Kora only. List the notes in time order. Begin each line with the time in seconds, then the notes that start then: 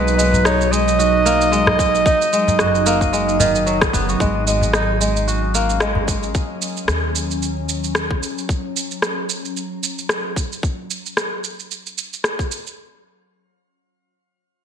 Already playing: G#3 A#3 D#4 F#4
0.18 G#3
0.45 D#4
0.71 G#3
0.99 F#4
1.25 A#3
1.52 G#3
1.79 G#3
2.06 D#4
2.33 G#3
2.60 F#4
2.86 A#3
3.13 G#3
3.40 D#3
3.66 F#3
3.94 B3
4.09 F#4
4.20 G#3
4.47 G#3
4.74 D#4
5.00 G#3
5.27 F#4
5.54 A#3
5.81 G#3
6.08 G#3